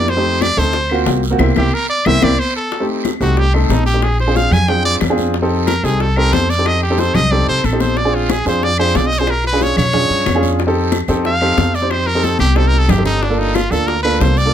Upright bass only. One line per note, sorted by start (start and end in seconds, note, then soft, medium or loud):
0.00 0.52 F2 medium
0.57 1.03 D2 loud
1.06 1.37 C2 loud
1.39 1.52 C2 loud
1.56 1.69 C2 loud
2.06 2.18 C2 loud
2.23 2.35 C2 loud
3.20 3.67 C2 loud
3.69 4.46 A#1 medium
4.51 4.97 F2 loud
5.01 5.78 F2 medium
5.83 6.29 C2 loud
6.32 7.09 F2 medium
7.15 7.45 C2 loud
7.48 7.63 C2 medium
7.64 8.40 A#1 medium
8.46 8.92 F2 loud
8.95 9.71 B1 medium
9.77 10.08 B2 loud
10.10 10.25 G2 medium
10.27 11.03 F2 medium
11.08 11.54 F2 loud
11.57 12.34 F2 medium
12.40 12.86 C2 loud
12.88 13.65 G1 medium
13.71 14.17 D2 medium
14.20 14.54 C2 loud